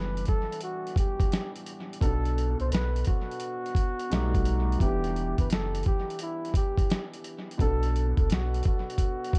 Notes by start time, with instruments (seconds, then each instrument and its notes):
Already playing: sub bass F#1, felt piano E3 G3 B3 D4, flugelhorn B4
0.17 closed hi-hat
0.26 flugelhorn A4, kick, closed hi-hat
0.52 closed hi-hat
0.61 flugelhorn F#4, closed hi-hat
0.87 closed hi-hat
0.96 flugelhorn G4, kick, closed hi-hat
1.20 kick, closed hi-hat
1.32 snare, closed hi-hat
1.56 closed hi-hat
1.66 closed hi-hat
1.93 closed hi-hat
2.01 sub bass B1, felt piano B2 B3, flugelhorn A4, kick, closed hi-hat
2.05 felt piano D4 A4
2.25 closed hi-hat
2.38 closed hi-hat
2.60 sub bass C2, flugelhorn C5, closed hi-hat
2.72 sub bass B1, flugelhorn B4, snare, closed hi-hat
2.96 closed hi-hat
3.05 flugelhorn F#4, kick, closed hi-hat
3.31 closed hi-hat
3.40 closed hi-hat
3.66 closed hi-hat
3.75 kick, closed hi-hat
3.99 closed hi-hat
4.10 sub bass B1, felt piano B2 G3 A3 D#4, snare, closed hi-hat
4.35 kick, closed hi-hat
4.45 closed hi-hat
4.72 closed hi-hat
4.79 sub bass E1, felt piano E3 B3, flugelhorn G4, kick, closed hi-hat
4.83 felt piano D4 G4
5.04 closed hi-hat
5.16 closed hi-hat
5.38 sub bass G1, flugelhorn B4, kick, closed hi-hat
5.50 sub bass F#1, flugelhorn A4, snare, closed hi-hat
5.75 closed hi-hat
5.83 kick, closed hi-hat
5.87 flugelhorn G4
6.10 closed hi-hat
6.19 flugelhorn E4, closed hi-hat
6.45 closed hi-hat
6.54 flugelhorn G4, kick, closed hi-hat
6.77 kick, closed hi-hat
6.90 snare, closed hi-hat
7.13 closed hi-hat
7.24 closed hi-hat
7.51 closed hi-hat
7.58 sub bass B1, felt piano B2 B3, flugelhorn A4, kick, closed hi-hat
7.62 felt piano D4 A4
7.83 closed hi-hat
7.96 closed hi-hat
8.17 sub bass C2, flugelhorn A4, kick, closed hi-hat
8.30 sub bass B1, flugelhorn F#4, snare, closed hi-hat
8.54 closed hi-hat
8.63 flugelhorn F#4, kick, closed hi-hat
8.90 closed hi-hat
8.98 kick, closed hi-hat
9.24 closed hi-hat
9.33 kick, closed hi-hat